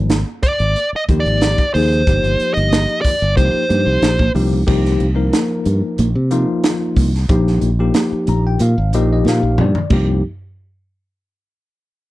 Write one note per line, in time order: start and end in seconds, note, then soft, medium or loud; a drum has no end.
0.00 0.23 G#1 medium
0.00 0.18 F3 medium
0.00 0.19 G3 medium
0.00 0.18 A#3 medium
0.00 0.18 D#4 medium
0.10 snare loud
0.10 closed hi-hat medium
0.10 muted conga soft
0.10 high conga medium
0.43 0.89 D5 loud
0.43 kick medium
0.43 closed hi-hat medium
0.60 0.74 G#1 medium
0.60 closed hi-hat soft
0.76 closed hi-hat medium
0.76 muted conga soft
0.93 1.02 D#5 medium
0.93 muted fingered electric bass stroke soft
1.09 1.23 D#2 medium
1.09 1.62 F3 medium
1.09 1.62 A#3 medium
1.09 1.62 D#4 medium
1.09 1.62 G4 medium
1.09 kick medium
1.09 closed hi-hat medium
1.09 high conga medium
1.20 1.74 D5 medium
1.26 1.54 G#1 medium
1.26 closed hi-hat soft
1.41 snare loud
1.41 closed hi-hat medium
1.41 high conga medium
1.58 kick medium
1.58 closed hi-hat soft
1.74 2.03 D#2 medium
1.74 2.01 F3 medium
1.74 2.01 A#3 medium
1.74 2.02 D#4 medium
1.74 2.02 G#4 medium
1.74 2.54 C5 medium
1.74 open hi-hat medium
1.92 closed hi-hat soft
2.07 2.22 G1 medium
2.07 3.12 F3 medium
2.07 3.13 A#3 medium
2.07 3.13 D#4 medium
2.07 3.13 G4 medium
2.07 kick loud
2.07 closed hi-hat medium
2.07 muted conga soft
2.24 2.37 G1 medium
2.24 closed hi-hat soft
2.40 muted fingered electric bass stroke soft
2.40 closed hi-hat medium
2.40 muted conga soft
2.54 2.85 G1 medium
2.54 3.00 D#5 medium
2.54 closed hi-hat soft
2.72 snare loud
2.72 closed hi-hat medium
2.72 muted conga soft
2.72 high conga medium
2.89 closed hi-hat soft
3.01 3.37 D5 medium
3.01 kick medium
3.01 open hi-hat medium
3.21 3.36 G1 medium
3.21 closed hi-hat soft
3.36 3.52 C2 medium
3.36 3.63 F3 medium
3.36 3.63 A#3 medium
3.36 3.64 D#4 medium
3.36 3.64 G4 medium
3.36 4.31 C5 medium
3.36 kick medium
3.36 closed hi-hat medium
3.36 muted conga soft
3.54 muted fingered electric bass stroke soft
3.69 3.85 G2 medium
3.69 4.22 F3 medium
3.69 4.23 A#3 medium
3.69 4.23 D#4 medium
3.69 4.23 G4 medium
3.69 closed hi-hat medium
3.69 high conga medium
3.86 4.00 C2 medium
4.02 4.32 A#1 medium
4.02 snare medium
4.02 closed hi-hat medium
4.02 high conga medium
4.19 kick medium
4.19 high conga medium
4.35 4.64 C2 medium
4.35 4.62 F3 medium
4.35 4.62 A#3 medium
4.35 4.62 D#4 medium
4.35 4.62 G4 medium
4.35 open hi-hat medium
4.35 low conga medium
4.53 low conga medium
4.66 4.96 C2 medium
4.66 5.07 F3 medium
4.66 5.07 A#3 medium
4.66 5.07 D#4 medium
4.66 5.07 G4 medium
4.66 kick loud
4.66 crash medium
4.66 muted conga soft
4.85 snare soft
5.00 5.29 C2 medium
5.00 closed hi-hat medium
5.15 6.08 F3 medium
5.15 6.08 A#3 medium
5.15 6.08 D#4 medium
5.15 6.08 A#4 medium
5.33 snare loud
5.33 closed hi-hat medium
5.33 high conga medium
5.66 5.81 G2 medium
5.66 closed hi-hat medium
5.98 6.13 A#1 medium
5.98 closed hi-hat medium
5.98 muted conga soft
5.98 high conga medium
6.15 6.44 C3 medium
6.31 7.10 F3 medium
6.31 7.10 A#3 medium
6.31 7.11 D#4 medium
6.31 7.11 F4 loud
6.31 closed hi-hat medium
6.31 muted conga soft
6.64 snare loud
6.64 closed hi-hat medium
6.96 7.25 C2 medium
6.96 kick medium
6.96 open hi-hat medium
6.96 high conga medium
7.15 snare soft
7.29 7.58 A#1 loud
7.29 7.69 F3 medium
7.29 7.69 A#3 medium
7.29 7.69 D#4 medium
7.29 7.69 G4 medium
7.29 kick loud
7.29 closed hi-hat medium
7.29 muted conga soft
7.47 snare soft
7.61 7.90 A#1 medium
7.61 closed hi-hat medium
7.80 8.71 F3 medium
7.80 8.71 A#3 medium
7.80 8.71 D#4 medium
7.80 8.71 G4 medium
7.94 snare loud
7.94 closed hi-hat medium
7.94 high conga medium
8.12 muted fingered electric bass stroke soft
8.27 8.56 A#1 medium
8.27 8.44 A#5 medium
8.27 closed hi-hat medium
8.27 high conga medium
8.47 8.60 G5 medium
8.59 8.75 A#2 loud
8.59 8.91 F5 medium
8.59 closed hi-hat medium
8.78 8.94 G#1 medium
8.93 9.21 A#1 medium
8.93 9.73 F3 medium
8.93 9.73 A#3 medium
8.93 9.73 D#4 medium
8.93 9.73 G4 medium
8.93 9.09 D#5 medium
8.93 closed hi-hat medium
8.93 muted conga soft
8.93 low conga medium
9.13 9.26 D#5 medium
9.25 9.40 A#2 medium
9.25 9.57 F5 medium
9.25 snare medium
9.25 high conga medium
9.43 9.60 A#1 medium
9.58 9.73 G2 medium
9.58 9.90 D5 medium
9.58 mid tom medium
9.75 floor tom medium
9.90 10.21 C2 medium
9.90 10.22 F3 medium
9.90 10.22 A#3 medium
9.90 10.22 D#4 medium
9.90 10.22 G4 medium
9.90 kick loud
9.90 crash medium
9.90 muted conga medium